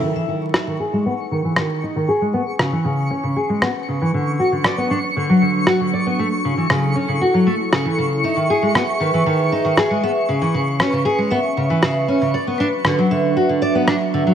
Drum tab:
SD |--r---r-|--r---r-|--r---r-|--r---r-|

SD |--r---r-|--r---r-|--r---r-|